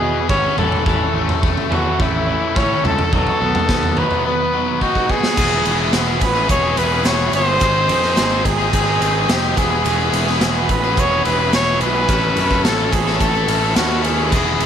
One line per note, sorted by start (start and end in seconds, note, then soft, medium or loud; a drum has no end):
0.00 0.18 B2 medium
0.00 0.57 E3 medium
0.00 0.58 B3 medium
0.00 0.27 B3 medium
0.00 0.27 E4 medium
0.00 0.25 G#4 loud
0.00 0.54 G#4 medium
0.00 3.08 C#5 medium
0.00 3.08 E5 medium
0.00 0.55 B5 medium
0.29 0.47 G#1 medium
0.29 0.56 B3 medium
0.29 0.58 C#4 medium
0.29 0.56 E4 loud
0.29 0.56 G#4 medium
0.29 0.56 C#5 loud
0.29 kick loud
0.57 0.74 A1 medium
0.57 0.85 E3 medium
0.57 0.84 C#4 medium
0.57 0.84 E4 loud
0.57 3.09 A4 medium
0.57 0.84 A4 medium
0.57 0.85 A4 medium
0.57 3.10 C#6 medium
0.57 floor tom medium
0.57 mid tom medium
0.72 floor tom medium
0.85 1.03 A1 loud
0.85 1.70 E3 medium
0.85 1.12 C#4 medium
0.85 1.12 E4 medium
0.85 1.40 A4 medium
0.85 1.13 A4 medium
0.85 kick medium
0.85 floor tom medium
1.14 1.31 A1 medium
1.14 1.42 A3 medium
1.14 1.39 C#4 medium
1.14 1.40 E4 medium
1.29 floor tom medium
1.42 1.60 E1 loud
1.42 1.98 A3 medium
1.42 1.68 C#4 medium
1.42 1.68 E4 medium
1.42 kick loud
1.57 floor tom medium
1.70 1.88 E2 medium
1.70 2.27 E3 medium
1.70 1.97 C#4 medium
1.70 1.97 E4 medium
1.70 2.03 F#4 medium
1.70 1.98 A4 loud
1.70 floor tom medium
1.99 2.34 A1 medium
1.99 3.12 A3 medium
1.99 2.24 C#4 medium
1.99 2.25 E4 medium
1.99 2.59 E4 loud
1.99 kick loud
1.99 floor tom medium
2.26 3.12 E3 medium
2.26 2.52 C#4 medium
2.26 2.52 E4 medium
2.55 2.73 A2 medium
2.55 2.82 C#4 loud
2.55 2.82 E4 medium
2.55 2.82 A4 loud
2.55 2.85 C#5 loud
2.55 kick loud
2.83 3.01 C#2 medium
2.83 3.09 C#4 medium
2.83 3.09 E4 medium
2.83 3.12 A4 medium
2.83 3.11 A4 medium
2.83 floor tom medium
2.83 mid tom medium
2.98 floor tom loud
3.12 3.30 B1 loud
3.12 3.39 F#3 medium
3.12 3.39 B3 medium
3.12 3.39 D#4 loud
3.12 4.00 A4 loud
3.12 5.35 B4 medium
3.12 5.35 D#5 medium
3.12 5.35 F#5 medium
3.12 5.35 D#6 medium
3.12 kick loud
3.12 floor tom medium
3.27 floor tom medium
3.40 3.57 B1 loud
3.40 3.66 F#3 medium
3.40 3.66 B3 medium
3.55 floor tom medium
3.55 mid tom medium
3.69 4.03 D#2 medium
3.69 3.94 F#3 medium
3.69 3.94 B3 medium
3.69 kick loud
3.69 snare medium
3.83 floor tom medium
3.96 4.23 F#3 medium
3.96 4.23 B3 medium
3.96 4.23 D#4 loud
3.96 4.26 B4 medium
3.96 floor tom medium
4.11 floor tom medium
4.25 4.50 F#3 medium
4.25 4.51 B3 medium
4.25 4.78 B4 medium
4.54 4.79 F#3 medium
4.54 4.79 B3 medium
4.81 5.08 F#3 medium
4.81 5.08 B3 medium
4.81 5.08 D#4 loud
4.81 5.12 F#4 loud
4.81 kick medium
4.95 kick medium
5.09 5.35 F#3 medium
5.09 5.35 B3 medium
5.09 5.37 F#4 medium
5.09 5.94 G#4 loud
5.09 kick medium
5.24 snare medium
5.36 5.64 E1 loud
5.36 5.79 B3 medium
5.36 5.51 E4 loud
5.36 5.50 G#4 loud
5.36 7.59 B4 medium
5.36 7.59 E5 medium
5.36 12.05 G#5 medium
5.36 7.59 C#6 medium
5.36 kick loud
5.36 crash loud
5.36 shaker medium
5.50 5.79 E4 medium
5.50 5.78 G#4 medium
5.50 shaker soft
5.65 5.92 E1 loud
5.65 5.92 B3 medium
5.65 5.93 E4 medium
5.65 5.95 G#4 medium
5.65 ride medium
5.65 shaker medium
5.78 5.93 E4 medium
5.78 5.94 G#4 medium
5.92 6.20 E1 loud
5.92 6.20 B3 medium
5.92 6.21 E4 medium
5.92 6.23 G#4 medium
5.92 snare loud
5.92 ride loud
5.92 shaker medium
6.08 6.21 E4 medium
6.08 6.22 G#4 medium
6.08 shaker soft
6.21 6.48 A1 medium
6.21 6.63 B3 medium
6.21 6.36 E4 medium
6.21 6.35 G#4 medium
6.21 6.48 B4 medium
6.21 muted overdriven electric guitar stroke soft
6.21 kick medium
6.21 ride medium
6.21 shaker medium
6.35 6.64 E4 medium
6.35 6.62 G#4 medium
6.35 shaker soft
6.49 6.76 E1 medium
6.49 6.79 C#5 loud
6.49 kick loud
6.49 ride medium
6.49 shaker loud
6.63 6.78 E4 medium
6.63 6.79 G#4 medium
6.77 7.04 E1 loud
6.77 7.05 B3 medium
6.77 6.92 E4 medium
6.77 6.91 G#4 medium
6.77 7.07 B4 medium
6.77 ride medium
6.77 shaker medium
6.92 7.06 E4 medium
6.92 7.07 G#4 medium
7.04 7.31 E1 loud
7.04 7.32 B3 medium
7.04 7.33 E4 medium
7.04 7.35 G#4 loud
7.04 7.34 C#5 loud
7.04 snare loud
7.04 ride loud
7.04 shaker loud
7.19 shaker soft
7.32 7.60 G1 loud
7.32 7.60 B3 medium
7.32 7.48 E4 medium
7.32 7.47 G#4 medium
7.32 8.47 C5 loud
7.32 ride medium
7.32 shaker medium
7.47 7.61 E4 medium
7.47 7.63 G#4 medium
7.47 shaker soft
7.60 7.88 G#1 medium
7.60 8.04 C4 medium
7.60 7.76 D#4 loud
7.60 7.75 G#4 loud
7.60 9.56 C5 medium
7.60 9.55 D#5 medium
7.60 9.56 D#6 medium
7.60 kick loud
7.60 ride loud
7.60 shaker loud
7.75 8.04 D#4 medium
7.75 8.02 G#4 medium
7.75 shaker soft
7.88 8.16 F2 medium
7.88 8.16 C4 medium
7.88 8.17 D#4 medium
7.88 8.19 G#4 medium
7.88 ride medium
7.88 shaker medium
8.03 8.16 D#4 medium
8.03 8.18 G#4 medium
8.03 snare soft
8.16 8.44 G#1 medium
8.16 8.43 C4 medium
8.16 8.45 D#4 medium
8.16 8.46 G#4 medium
8.16 snare loud
8.16 ride loud
8.16 shaker loud
8.31 8.44 D#4 medium
8.31 8.45 G#4 medium
8.31 shaker soft
8.45 8.72 G#1 medium
8.45 8.87 C4 medium
8.45 8.60 D#4 medium
8.45 8.72 G#4 medium
8.45 8.58 G#4 medium
8.45 muted overdriven electric guitar stroke soft
8.45 kick medium
8.45 ride medium
8.45 shaker medium
8.59 8.88 D#4 medium
8.59 8.86 G#4 medium
8.59 shaker soft
8.73 9.00 G#1 loud
8.73 9.32 G#4 loud
8.73 kick medium
8.73 ride loud
8.73 shaker loud
8.87 9.01 D#4 medium
8.87 9.02 G#4 medium
9.01 9.28 G#1 loud
9.01 9.27 C4 medium
9.01 9.16 D#4 medium
9.01 9.15 G#4 loud
9.01 ride medium
9.01 shaker medium
9.16 9.28 D#4 medium
9.16 9.29 G#4 medium
9.28 9.56 F1 medium
9.28 9.55 C4 medium
9.28 9.56 D#4 loud
9.28 9.57 G4 medium
9.28 9.56 G#4 loud
9.28 snare loud
9.28 ride loud
9.28 shaker loud
9.43 shaker soft
9.56 9.84 E1 medium
9.56 9.84 B3 loud
9.56 9.72 E4 medium
9.56 10.38 G#4 medium
9.56 9.69 G#4 medium
9.56 12.07 B4 medium
9.56 14.66 E5 medium
9.56 12.07 C#6 medium
9.56 kick medium
9.56 ride medium
9.56 shaker medium
9.70 9.86 E4 medium
9.70 9.86 G#4 medium
9.70 shaker soft
9.85 10.12 E1 loud
9.85 10.40 B3 loud
9.85 10.00 E4 loud
9.85 9.97 G#4 loud
9.85 ride loud
9.85 shaker medium
9.98 10.29 E4 medium
9.98 10.26 G#4 medium
9.98 shaker soft
10.12 10.40 E1 medium
10.12 10.41 B3 medium
10.12 10.42 E4 medium
10.12 10.42 G#4 medium
10.12 ride medium
10.12 shaker medium
10.27 10.41 E4 medium
10.27 10.42 G#4 medium
10.27 snare soft
10.41 10.68 E1 loud
10.41 10.69 B3 medium
10.41 10.70 E4 medium
10.41 10.70 G#4 loud
10.41 snare loud
10.41 ride loud
10.41 shaker medium
10.56 10.70 E4 medium
10.56 10.70 G#4 medium
10.56 shaker soft
10.69 10.96 A1 medium
10.69 11.25 B3 medium
10.69 10.85 E4 medium
10.69 10.81 G#4 medium
10.69 11.01 B4 medium
10.69 muted overdriven electric guitar stroke soft
10.69 kick medium
10.69 ride medium
10.69 shaker medium
10.83 11.13 E4 medium
10.83 11.10 G#4 medium
10.83 shaker soft
10.97 11.24 E1 loud
10.97 11.25 C#5 loud
10.97 kick loud
10.97 ride medium
10.97 shaker loud
11.11 11.26 E4 medium
11.11 11.25 G#4 medium
11.25 11.52 E1 loud
11.25 11.52 B3 medium
11.25 11.40 E4 medium
11.25 11.37 G#4 medium
11.25 11.51 B4 loud
11.25 ride medium
11.25 shaker medium
11.38 11.53 E4 medium
11.38 11.53 G#4 medium
11.52 11.80 E1 medium
11.52 11.80 B3 loud
11.52 11.81 E4 loud
11.52 11.81 G#4 loud
11.52 11.80 C#5 loud
11.52 snare loud
11.52 ride medium
11.52 shaker medium
11.67 shaker soft
11.80 12.08 B1 medium
11.80 12.08 B3 medium
11.80 11.96 E4 medium
11.80 11.93 G#4 medium
11.80 12.66 B4 loud
11.80 ride medium
11.80 shaker medium
11.94 12.09 E4 medium
11.94 12.07 G#4 medium
11.94 shaker soft
12.08 12.35 A1 loud
12.08 12.64 C#4 loud
12.08 12.24 E4 medium
12.08 12.21 A4 loud
12.08 14.66 B4 medium
12.08 14.31 A5 medium
12.08 14.66 C#6 medium
12.08 kick loud
12.08 ride medium
12.08 shaker medium
12.22 12.52 E4 medium
12.22 12.49 A4 medium
12.36 12.63 F#2 loud
12.36 12.64 C#4 medium
12.36 12.66 E4 medium
12.36 12.66 A4 medium
12.36 ride medium
12.36 shaker medium
12.50 12.65 E4 medium
12.50 12.65 A4 medium
12.50 kick medium
12.50 shaker soft
12.64 12.91 A1 loud
12.64 12.92 C#4 medium
12.64 12.93 E4 medium
12.64 12.94 A4 loud
12.64 12.93 A4 loud
12.64 snare loud
12.64 ride loud
12.64 shaker medium
12.79 12.94 E4 medium
12.79 12.93 A4 medium
12.79 shaker soft
12.92 13.20 A1 medium
12.92 13.35 C#4 medium
12.92 13.06 E4 medium
12.92 13.19 G#4 medium
12.92 13.04 A4 medium
12.92 muted overdriven electric guitar stroke soft
12.92 kick medium
12.92 ride medium
12.92 shaker medium
13.06 13.34 E4 medium
13.06 13.32 A4 medium
13.06 snare soft
13.20 13.48 A1 medium
13.20 13.77 A4 loud
13.20 kick medium
13.20 ride medium
13.20 shaker medium
13.34 13.47 E4 medium
13.34 13.48 A4 medium
13.34 shaker soft
13.48 13.75 A1 medium
13.48 13.73 C#4 medium
13.48 13.62 E4 medium
13.48 13.60 A4 loud
13.48 ride medium
13.48 shaker medium
13.61 13.75 E4 medium
13.61 13.75 A4 medium
13.61 shaker soft
13.74 14.30 D#2 medium
13.74 14.02 C#4 loud
13.74 14.03 E4 medium
13.74 14.03 F#4 medium
13.74 14.04 A4 loud
13.74 snare loud
13.74 ride loud
13.74 shaker medium
13.90 shaker soft
14.03 14.30 C#4 medium
14.03 14.18 E4 medium
14.03 14.66 G#4 medium
14.03 14.16 A4 medium
14.03 ride medium
14.03 shaker medium
14.17 14.31 E4 medium
14.17 14.30 A4 medium
14.17 shaker soft
14.31 14.59 E1 loud
14.31 14.66 B3 medium
14.31 14.47 E4 loud
14.31 14.46 G#4 loud
14.31 14.66 G#5 medium
14.31 kick loud
14.31 crash medium
14.31 shaker medium
14.46 14.66 E4 medium
14.46 14.66 G#4 medium
14.46 shaker soft
14.60 14.66 E1 medium
14.60 14.66 B3 medium
14.60 14.66 E4 medium
14.60 14.66 G#4 medium
14.60 ride medium
14.60 shaker medium